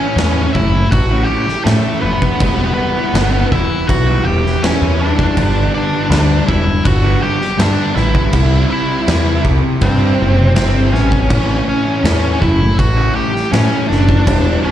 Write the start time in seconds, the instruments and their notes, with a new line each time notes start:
Already playing: distorted electric guitar A2 E3, lead electric guitar C#4 C#5
0.00 distorted electric guitar A3 C#4 E4
0.16 picked electric bass E2, distorted electric guitar A2 E3 A3, snare, crash
0.20 distorted electric guitar C#4 E4
0.53 picked electric bass F#1, distorted electric guitar E3 A3, lead electric guitar E4 E5, kick
0.58 distorted electric guitar C#4 E4
0.74 muted distorted electric guitar stroke
0.91 picked electric bass A1, lead electric guitar F#4 F#5, kick, crash
1.11 distorted electric guitar A3 C#4 E4
1.24 lead electric guitar G4 G5
1.29 distorted electric guitar E3 A3 C#4 E4
1.47 muted distorted electric guitar stroke, snare
1.64 distorted electric guitar A2 E3 A3 C#4 E4, picked electric bass A2, lead electric guitar A3 A4, snare, crash
1.84 distorted electric guitar A3 C#4 E4
2.01 picked electric bass F1, distorted electric guitar E3 A3 C#4 E4, lead electric guitar B3 B4
2.22 kick
2.39 picked electric bass E1, distorted electric guitar E3 G3 B3 E4, kick, crash
2.74 lead electric guitar B3 B4
2.95 distorted electric guitar G3 B3 E4
3.13 picked electric bass G1, distorted electric guitar E3 G3 B3 E4, snare, crash
3.51 picked electric bass E1, distorted electric guitar E3 G3 B3 E4, lead electric guitar E4 E5, kick
3.70 muted distorted electric guitar stroke
3.88 picked electric bass B1, lead electric guitar F#4 F#5, kick, crash
4.07 distorted electric guitar G3 B3 E4
4.25 picked electric bass E1, distorted electric guitar E3 G3 B3 E4, lead electric guitar G4 G5
4.45 muted distorted electric guitar stroke, snare
4.62 distorted electric guitar E3 G3 B3 E4, lead electric guitar C#4 C#5, snare, crash
4.82 picked electric bass E2, distorted electric guitar G3 B3 E4
4.99 distorted electric guitar E3 G3 B3 E4, lead electric guitar D4 D5
5.19 kick
5.36 picked electric bass G1, distorted electric guitar G2 D3 G3 B3 D4, kick, crash
5.74 lead electric guitar D4 D5
5.91 distorted electric guitar G3 B3 D4
6.09 picked electric bass D2, distorted electric guitar G2 D3 G3 B3 D4, snare, crash
6.47 picked electric bass E1, distorted electric guitar D3 G3 B3 D4, lead electric guitar E4 E5, kick
6.66 muted distorted electric guitar stroke
6.85 picked electric bass G1, lead electric guitar F#4 F#5, kick, crash
7.02 distorted electric guitar G3 B3 D4
7.20 distorted electric guitar D3 G3 B3 D4, lead electric guitar G4 G5
7.39 muted distorted electric guitar stroke, snare
7.57 distorted electric guitar G2 D3 G3 B3 D4, picked electric bass G2, lead electric guitar D5, snare, crash
7.62 lead electric guitar D4
7.77 distorted electric guitar G3 B3 D4
7.95 picked electric bass A1, distorted electric guitar D3 G3 B3 D4, lead electric guitar E4 E5, snare
8.15 kick
8.32 picked electric bass C2, distorted electric guitar C3 G3 C4 E4, kick, crash
8.71 lead electric guitar E4 E5
8.88 distorted electric guitar G3 C4 E4
9.07 picked electric bass E2, distorted electric guitar C3 G3 C4 E4, snare, crash
9.43 picked electric bass C2, distorted electric guitar C3 G3 C4 E4, kick
9.62 muted distorted electric guitar stroke
9.81 picked electric bass G2, lead electric guitar C4 C5, kick, crash
9.99 distorted electric guitar G3 C4 E4
10.17 picked electric bass F#1, distorted electric guitar C3 G3 C4 E4
10.37 muted distorted electric guitar stroke
10.55 picked electric bass G1, distorted electric guitar C3 G3 C4 E4, lead electric guitar C4 C5, snare, crash
10.74 distorted electric guitar G3 C4 E4
10.91 picked electric bass A1, distorted electric guitar C3 G3 C4 E4, lead electric guitar C#4 C#5, snare
11.12 kick
11.30 picked electric bass A1, distorted electric guitar A2 E3 A3 C#4 E4, kick, crash
11.68 lead electric guitar C#4 C#5
11.85 distorted electric guitar A3 C#4 E4
12.04 picked electric bass E2, distorted electric guitar A2 E3 A3 C#4 E4, snare, crash
12.41 picked electric bass F#1, distorted electric guitar E3 A3 C#4 E4, lead electric guitar E4 E5, kick
12.62 muted distorted electric guitar stroke
12.78 picked electric bass A1, lead electric guitar F#4 F#5, kick, crash
12.97 distorted electric guitar A3 C#4 E4
13.14 distorted electric guitar E3 A3 C#4 E4, lead electric guitar G4 G5
13.33 muted distorted electric guitar stroke, snare
13.52 distorted electric guitar A2 E3 A3 C#4 E4, picked electric bass A2, lead electric guitar C#4 C#5, snare, crash
13.71 distorted electric guitar A3 C#4 E4
13.88 picked electric bass F#1, distorted electric guitar E3 A3 C#4 E4, lead electric guitar D4 D5, snare
14.09 kick
14.24 picked electric bass E1, distorted electric guitar E3 G3 B3 E4, kick, crash
14.63 lead electric guitar D4 D5